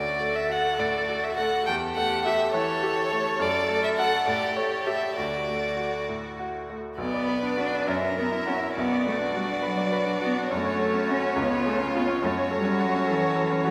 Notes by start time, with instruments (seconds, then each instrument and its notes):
Already playing: grand piano D2, violin F#4 D5, cello A4
0.20 grand piano A3
0.35 violin E5
0.49 grand piano F#4, violin F#5
0.79 grand piano A2, violin F#4 D5
1.08 grand piano F#4
1.24 violin E5
1.36 grand piano A3, violin F#5
1.65 grand piano E2, cello G4, violin A4 G5
1.95 grand piano A3, violin F#5
2.25 grand piano G4, violin E5
2.52 grand piano E3, violin A4 C#5, cello A4
2.83 grand piano G4
3.11 grand piano A3
3.39 grand piano F#2, violin A4 D5
3.68 grand piano A3
3.84 violin E5
3.97 grand piano F#4 A4, violin F#5
4.26 grand piano A2, violin G4 D5
4.56 grand piano A3, violin C#5
4.87 grand piano G4 A4, violin E5
5.16 grand piano D2, violin F#4 D5, cello F#4
5.48 grand piano A3
5.77 grand piano F#4
6.09 grand piano A2
6.39 grand piano F#4
6.70 grand piano A3
6.98 grand piano B1, cello B3, violin B4 D5
7.14 grand piano D5
7.28 grand piano B4
7.43 grand piano D4
7.57 cello D4, grand piano F#4
7.72 grand piano D4
7.87 grand piano F#2, cello C#4, violin A#4 E5
8.02 grand piano E5
8.17 cello B3, grand piano A#4
8.31 grand piano E4
8.46 cello C#4, grand piano F#4
8.61 grand piano E4
8.75 grand piano B1, cello B3, violin F#4 D5
8.91 grand piano D5
9.05 cello A3, grand piano B4
9.19 grand piano D4
9.34 cello G3, grand piano F#4
9.49 grand piano D4
9.62 cello F#3, grand piano B4
9.78 grand piano D5
9.92 grand piano B4
10.06 grand piano D4
10.21 cello B3, grand piano F#4
10.37 grand piano D4
10.49 grand piano F#2, violin C#5
10.54 cello A3
10.65 grand piano C#5
10.79 grand piano A4
10.94 grand piano C#4
11.09 cello C#4, grand piano F#4
11.22 grand piano C#4
11.36 grand piano C#2, cello B3, violin F4
11.50 grand piano C#5
11.65 cello A3, grand piano G#4
11.78 grand piano C#4
11.95 cello B3, grand piano F4
12.07 grand piano C#4
12.22 grand piano F#2, cello A3, violin F#4
12.37 grand piano C#5
12.51 cello G3, grand piano A4
12.65 grand piano C#4
12.80 cello F#3, grand piano F#4
12.94 grand piano C#4
13.07 grand piano A4
13.11 cello E3
13.22 grand piano C#5
13.36 grand piano A4
13.51 grand piano C#4
13.64 cello A3, grand piano F#4